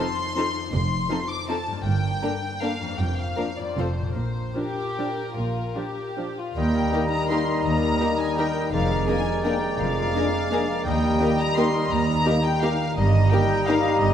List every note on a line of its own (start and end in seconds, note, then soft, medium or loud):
0.00 1.78 F2 soft
0.00 1.80 C4 soft
0.00 1.83 D#4 soft
0.00 1.85 A4 soft
0.00 0.72 C6 medium
0.37 0.45 F3 soft
0.37 0.45 C4 soft
0.37 0.45 D#4 soft
0.37 0.45 A4 soft
0.73 1.02 F1 medium
0.73 1.02 F2 medium
0.73 1.28 C6 medium
1.10 1.18 F3 soft
1.10 1.18 C4 soft
1.10 1.18 D#4 soft
1.10 1.19 A4 soft
1.29 1.48 D6 medium
1.49 1.57 F3 soft
1.49 1.57 C4 soft
1.49 1.57 D#4 soft
1.49 1.57 A4 soft
1.49 1.85 A5 medium
1.67 2.91 G2 soft
1.72 2.84 A#3 soft
1.77 2.89 D4 soft
1.81 2.93 A#4 soft
1.81 2.60 G5 medium
1.86 2.15 G1 medium
1.86 2.15 G2 medium
2.23 2.31 D3 soft
2.23 2.31 A#3 soft
2.23 2.31 D4 soft
2.23 2.31 A#4 soft
2.61 2.71 D3 soft
2.61 2.71 A#3 soft
2.61 2.69 D4 soft
2.61 2.69 A#4 soft
2.61 2.99 F5 medium
2.81 3.59 F2 soft
2.85 3.72 A#3 soft
2.90 3.74 D4 soft
2.94 3.77 A#4 soft
2.99 3.28 F1 soft
2.99 3.28 F2 soft
2.99 3.17 G5 medium
3.18 3.58 F5 medium
3.37 3.45 F3 soft
3.37 3.45 A#3 soft
3.37 3.45 D4 soft
3.37 3.45 A#4 soft
3.57 4.09 F2 soft
3.57 3.77 D5 medium
3.64 4.11 C4 soft
3.69 4.07 F4 soft
3.73 4.08 F1 soft
3.73 4.08 F2 soft
3.73 3.85 F3 soft
3.73 4.16 A4 soft
3.77 3.85 C4 soft
3.77 3.86 F4 soft
3.77 3.86 A4 soft
3.77 4.16 C5 soft
3.99 6.49 A#2 soft
4.03 6.51 D4 soft
4.08 6.53 F4 soft
4.12 4.48 A#1 soft
4.12 4.48 A#2 soft
4.12 6.73 A#4 soft
4.17 4.56 C5 soft
4.56 4.64 F3 soft
4.56 4.64 D4 soft
4.56 5.33 G4 soft
4.56 6.18 A#4 soft
4.99 5.07 F3 soft
4.99 5.07 D4 soft
5.37 5.68 A#1 soft
5.37 5.68 A#2 soft
5.37 5.77 F4 soft
5.77 5.85 F3 soft
5.77 5.85 D4 soft
5.77 6.38 G4 soft
6.18 6.26 F3 soft
6.18 6.26 D4 soft
6.38 6.56 F4 soft
6.56 6.86 D#2 soft
6.56 7.64 D#3 soft
6.56 8.69 G3 soft
6.56 8.69 A#4 soft
6.56 8.70 D#5 soft
6.56 7.08 G5 medium
6.56 8.70 A#5 soft
6.74 7.29 A#4 soft
6.92 7.00 D#3 soft
6.92 7.06 A#3 soft
6.92 7.00 D#4 soft
6.92 7.06 D#4 soft
6.92 7.01 G4 soft
6.92 7.01 A#4 soft
7.11 7.43 D4 soft
7.11 7.29 A#5 medium
7.29 7.38 D#3 soft
7.29 7.43 A#3 soft
7.29 7.43 D#4 soft
7.29 7.38 D#4 soft
7.29 7.38 G4 soft
7.29 7.81 A#4 soft
7.29 7.38 A#4 soft
7.29 7.64 C6 medium
7.48 8.00 D#4 soft
7.65 7.95 D#2 soft
7.65 8.74 D#3 soft
7.65 8.19 A#5 medium
7.83 8.37 A#4 soft
8.00 8.09 D#3 soft
8.00 8.14 A#3 soft
8.00 8.55 D#4 soft
8.00 8.15 D#4 soft
8.00 8.10 D#4 soft
8.00 8.08 G4 soft
8.00 8.09 A#4 soft
8.19 8.51 D4 soft
8.19 8.38 G#5 medium
8.38 8.47 D#3 soft
8.38 8.52 A#3 soft
8.38 8.51 D#4 soft
8.38 8.47 D#4 soft
8.38 8.46 G4 soft
8.38 8.46 A#4 soft
8.38 8.89 A#4 soft
8.38 8.73 G5 medium
8.56 8.75 D#4 soft
8.73 9.02 F1 soft
8.73 9.02 F2 medium
8.73 9.79 F3 soft
8.73 10.83 G#3 soft
8.73 10.83 A#4 soft
8.73 10.88 D5 soft
8.73 9.08 F5 medium
8.73 10.83 A#5 soft
8.91 9.62 A#4 soft
9.08 9.17 A#3 soft
9.08 9.22 A#3 soft
9.08 9.17 D4 soft
9.08 9.22 D4 soft
9.08 9.16 G#4 soft
9.08 9.44 G#4 soft
9.08 9.16 A#4 soft
9.08 9.45 G#5 medium
9.27 9.58 G4 soft
9.45 9.53 A#3 soft
9.45 9.58 A#3 soft
9.45 9.53 D4 soft
9.45 9.58 D4 soft
9.45 10.14 G#4 soft
9.45 9.54 G#4 soft
9.45 9.54 A#4 soft
9.45 9.79 G5 medium
9.63 10.68 A#4 soft
9.79 10.09 F1 soft
9.79 10.09 F2 soft
9.79 10.88 F3 medium
9.79 10.87 F5 medium
9.98 10.88 D4 soft
10.15 10.23 A#3 soft
10.15 10.29 A#3 soft
10.15 10.23 D4 soft
10.15 10.29 D4 soft
10.15 10.51 G#4 soft
10.15 10.24 G#4 soft
10.15 10.24 A#4 soft
10.34 10.65 G4 soft
10.50 10.58 A#3 soft
10.50 10.65 A#3 soft
10.50 10.59 D4 soft
10.50 10.65 D4 soft
10.50 10.88 G#4 soft
10.50 10.60 G#4 soft
10.50 10.61 A#4 soft
10.70 11.02 A#4 soft
10.86 11.15 D#2 medium
10.86 11.16 D#2 medium
10.86 11.91 D#3 medium
10.86 12.68 G3 soft
10.86 12.68 G4 soft
10.86 12.72 D#5 soft
10.86 11.39 G5 medium
10.86 12.94 A#5 soft
11.03 11.74 A#4 soft
11.21 11.29 A#3 soft
11.21 11.34 A#3 soft
11.21 11.29 D#4 soft
11.21 11.35 D#4 soft
11.21 11.29 G4 soft
11.21 11.57 G4 soft
11.21 11.30 A#4 soft
11.40 11.70 F4 soft
11.40 11.57 A#5 medium
11.57 11.65 A#3 soft
11.57 11.70 A#3 soft
11.57 11.65 D#4 soft
11.57 11.70 D#4 soft
11.57 11.66 G4 soft
11.57 12.26 G4 soft
11.57 11.65 A#4 soft
11.57 11.91 C6 medium
11.75 12.80 A#4 soft
11.90 12.20 D#2 medium
11.90 12.99 D#3 medium
11.90 12.44 A#5 medium
12.08 13.14 D#4 soft
12.26 12.34 A#3 soft
12.26 12.40 A#3 medium
12.26 12.34 D#4 soft
12.26 12.40 D#4 medium
12.26 12.34 G4 soft
12.26 12.62 G4 soft
12.26 12.34 A#4 soft
12.44 12.76 F4 soft
12.44 12.62 G5 medium
12.62 12.70 A#3 soft
12.62 12.76 A#3 soft
12.62 12.70 D#4 soft
12.62 12.76 D#4 soft
12.62 12.71 G4 soft
12.62 14.14 G4 soft
12.62 12.71 A#4 soft
12.62 12.97 F5 medium
12.81 13.32 A#4 soft
12.97 13.26 G1 medium
12.97 13.26 G2 medium
12.97 14.00 G2 medium
12.97 14.14 G3 medium
12.97 14.14 G4 soft
12.97 13.31 D#5 medium
12.97 14.14 D#5 soft
12.97 14.14 A#5 medium
13.15 13.83 D#4 soft
13.31 13.45 A#3 medium
13.31 13.40 A#3 soft
13.31 13.45 D#4 medium
13.31 13.40 D#4 soft
13.31 13.40 G4 medium
13.31 13.40 A#4 soft
13.31 13.66 A#4 soft
13.31 13.67 G5 medium
13.51 13.80 G#4 soft
13.68 13.80 A#3 soft
13.68 13.76 A#3 soft
13.68 13.80 D#4 soft
13.68 13.76 D#4 soft
13.68 13.76 G4 medium
13.68 13.76 A#4 medium
13.68 14.14 A#4 soft
13.68 14.01 F5 medium
13.85 14.14 D#4 soft
14.01 14.14 G1 medium
14.01 14.14 G2 medium
14.01 14.14 D#5 medium